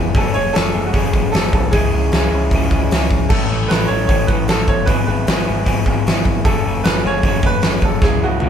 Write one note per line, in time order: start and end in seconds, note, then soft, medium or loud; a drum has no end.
0.00 0.12 F1 medium
0.00 0.14 F#3 medium
0.00 0.15 B3 medium
0.00 0.15 E4 medium
0.00 0.17 G#4 medium
0.14 0.32 F#1 loud
0.14 0.54 F#2 medium
0.14 0.55 C#3 loud
0.14 0.36 F#3 loud
0.14 0.35 A3 loud
0.14 0.36 C#4 loud
0.14 0.34 G#4 loud
0.14 0.34 A4 loud
0.14 kick loud
0.14 open hi-hat medium
0.34 0.53 F#1 medium
0.34 0.53 F#3 medium
0.34 0.53 A3 medium
0.34 0.55 C#4 medium
0.34 0.56 G#4 medium
0.34 0.55 C#5 loud
0.53 0.72 F#1 medium
0.53 0.74 F#3 medium
0.53 0.74 A3 medium
0.53 0.74 C#4 medium
0.53 0.73 G#4 loud
0.53 0.84 A4 loud
0.53 snare loud
0.53 open hi-hat medium
0.74 0.92 F#1 medium
0.74 0.92 F#3 medium
0.74 0.93 A3 medium
0.74 0.95 C#4 medium
0.74 0.94 G#4 medium
0.85 0.93 F#4 medium
0.93 1.11 F#1 loud
0.93 1.33 F#2 loud
0.93 1.33 C#3 loud
0.93 1.14 F#3 loud
0.93 1.13 A3 loud
0.93 1.14 C#4 loud
0.93 1.34 G#4 medium
0.93 1.12 G#4 loud
0.93 kick medium
0.93 open hi-hat medium
1.13 1.31 F#1 loud
1.13 1.32 F#3 medium
1.13 1.33 A3 medium
1.13 1.34 C#4 medium
1.13 1.34 G#4 medium
1.13 kick medium
1.32 1.51 F#1 medium
1.32 1.72 F#3 medium
1.32 1.72 A3 medium
1.32 1.74 C#4 medium
1.32 1.73 G#4 medium
1.32 1.52 A4 loud
1.32 snare loud
1.32 open hi-hat medium
1.53 1.70 C2 medium
1.53 1.74 A4 loud
1.53 kick medium
1.71 1.90 C#2 loud
1.71 2.13 C#3 medium
1.71 2.12 G#3 medium
1.71 1.94 C#4 loud
1.71 1.93 E4 loud
1.71 3.06 G#4 loud
1.71 1.92 G#4 loud
1.71 kick loud
1.71 open hi-hat medium
1.93 2.10 C#2 medium
1.93 2.14 C#4 medium
1.93 2.15 E4 medium
1.93 2.14 G#4 medium
2.12 2.30 C#2 medium
2.12 2.52 G#3 medium
2.12 2.35 C#4 medium
2.12 2.34 E4 medium
2.12 2.33 G#4 loud
2.12 snare loud
2.12 open hi-hat medium
2.32 2.49 C#2 medium
2.32 2.53 C#4 medium
2.32 2.55 E4 medium
2.32 2.54 G#4 medium
2.51 2.69 C#2 loud
2.51 2.92 C#3 loud
2.51 2.91 G#3 loud
2.51 2.74 C#4 loud
2.51 2.74 E4 loud
2.51 kick medium
2.51 open hi-hat medium
2.55 2.72 G#4 loud
2.71 2.89 C#2 loud
2.71 2.93 E4 medium
2.71 2.93 G#4 medium
2.71 kick medium
2.75 2.92 C#4 medium
2.91 3.09 C#2 medium
2.91 3.30 G#3 medium
2.91 3.30 C#4 medium
2.91 3.32 E4 medium
2.91 3.31 G#4 medium
2.91 snare loud
2.91 open hi-hat medium
3.11 3.28 C#2 medium
3.11 kick medium
3.29 3.48 A1 loud
3.29 3.70 A2 medium
3.29 4.09 E3 loud
3.29 3.51 A3 medium
3.29 3.50 C#4 medium
3.29 3.50 E4 loud
3.29 3.70 A4 loud
3.29 kick loud
3.29 crash loud
3.33 3.48 A4 loud
3.50 3.67 A1 loud
3.50 3.68 A3 medium
3.50 3.69 C#4 medium
3.50 3.70 E4 medium
3.50 3.70 A4 medium
3.68 3.88 A1 medium
3.68 3.91 A3 medium
3.68 3.90 C#4 medium
3.68 3.90 E4 medium
3.68 3.89 A4 loud
3.68 3.89 B4 loud
3.68 snare loud
3.68 open hi-hat medium
3.87 4.07 A1 medium
3.87 4.09 E4 medium
3.87 4.09 A4 medium
3.87 4.05 C#5 loud
3.91 4.09 A3 medium
3.91 4.09 C#4 medium
4.07 4.26 A1 loud
4.07 4.48 A2 loud
4.07 4.49 E3 loud
4.07 4.30 A3 loud
4.07 4.30 C#4 loud
4.07 4.29 E4 loud
4.07 4.26 C#5 loud
4.07 kick loud
4.07 open hi-hat medium
4.11 4.29 A4 loud
4.27 4.46 A1 loud
4.27 4.49 E4 medium
4.27 4.50 A4 medium
4.27 4.48 B4 medium
4.27 kick medium
4.31 4.48 A3 medium
4.31 4.48 C#4 medium
4.46 4.65 A1 loud
4.46 4.87 A3 medium
4.46 4.87 C#4 medium
4.46 4.69 A4 loud
4.46 snare loud
4.46 open hi-hat medium
4.51 4.87 E4 medium
4.51 4.88 A4 medium
4.68 4.85 G1 medium
4.68 4.86 C#5 loud
4.68 kick medium
4.86 5.05 G#1 loud
4.86 5.27 G#2 medium
4.86 5.28 E3 medium
4.86 5.09 F#3 loud
4.86 5.08 B3 loud
4.86 5.07 E4 loud
4.86 5.07 G#4 medium
4.86 5.05 B4 loud
4.86 kick loud
4.86 open hi-hat medium
5.06 5.25 G#1 loud
5.06 5.28 F#3 medium
5.06 5.28 B3 medium
5.06 5.29 E4 medium
5.06 5.29 G#4 medium
5.06 5.62 B4 medium
5.27 5.45 G#1 medium
5.27 5.49 F#3 medium
5.27 5.47 B3 medium
5.27 5.47 E4 medium
5.27 5.47 G#4 medium
5.27 snare loud
5.27 open hi-hat medium
5.47 5.65 G#1 medium
5.47 5.66 F#3 medium
5.47 5.66 B3 medium
5.47 5.66 E4 medium
5.47 5.67 G#4 medium
5.66 5.84 G#1 loud
5.66 6.06 G#2 loud
5.66 6.06 E3 loud
5.66 5.87 F#3 loud
5.66 5.86 B3 loud
5.66 5.86 E4 loud
5.66 5.86 G#4 loud
5.66 kick medium
5.66 open hi-hat medium
5.86 6.04 G#1 loud
5.86 6.05 F#3 medium
5.86 6.06 B3 medium
5.86 6.07 E4 medium
5.86 6.08 G#4 medium
5.86 kick medium
6.06 6.23 G#1 medium
6.06 6.45 F#3 medium
6.06 6.45 B3 medium
6.06 6.45 E4 medium
6.06 6.48 G#4 medium
6.06 snare loud
6.06 open hi-hat medium
6.25 6.43 G#1 medium
6.25 kick medium
6.45 6.62 F#1 loud
6.45 6.85 F#2 medium
6.45 6.85 C#3 medium
6.45 6.67 F#3 loud
6.45 6.66 A3 loud
6.45 6.66 C#4 loud
6.45 6.64 G#4 loud
6.45 6.86 A4 loud
6.45 kick loud
6.45 open hi-hat medium
6.65 6.83 F#1 medium
6.65 6.83 F#3 medium
6.65 6.84 A3 medium
6.65 6.86 C#4 medium
6.65 6.86 G#4 medium
6.84 7.02 F#1 medium
6.84 7.06 F#3 medium
6.84 7.05 A3 medium
6.84 7.05 C#4 medium
6.84 7.04 G#4 medium
6.84 7.02 B4 loud
6.84 snare loud
6.84 open hi-hat medium
7.04 7.22 F#1 medium
7.04 7.24 F#3 medium
7.04 7.24 A3 medium
7.04 7.26 C#4 medium
7.04 7.25 G#4 medium
7.04 7.24 C#5 loud
7.23 7.41 F#1 loud
7.23 7.63 F#2 loud
7.23 7.64 C#3 loud
7.23 7.44 F#3 loud
7.23 7.43 A3 loud
7.23 7.44 C#4 loud
7.23 7.42 G#4 loud
7.23 7.45 C#5 loud
7.23 kick medium
7.23 open hi-hat medium
7.43 7.61 F#1 loud
7.43 7.61 F#3 medium
7.43 7.61 A3 medium
7.43 7.63 C#4 medium
7.43 7.63 G#4 medium
7.43 7.85 B4 loud
7.43 kick loud
7.62 7.81 F#1 medium
7.62 8.01 F#3 medium
7.62 8.01 A3 medium
7.62 8.04 C#4 medium
7.62 8.02 G#4 medium
7.62 snare loud
7.62 open hi-hat medium
7.81 7.99 F#1 medium
7.81 8.04 A4 medium
7.81 kick medium
8.02 8.20 C#2 loud
8.02 8.41 C#3 loud
8.02 8.23 G#3 medium
8.02 8.22 C#4 loud
8.02 8.21 E4 loud
8.02 8.23 G#4 loud
8.02 kick loud
8.02 snare medium
8.21 8.39 C#2 medium
8.21 8.41 G#3 medium
8.21 8.42 C#4 medium
8.21 8.42 E4 medium
8.21 8.49 F#4 medium
8.40 8.49 C#2 medium
8.40 8.49 C#3 medium
8.40 8.49 G#3 medium
8.40 8.49 C#4 medium
8.40 8.49 E4 medium
8.40 high tom medium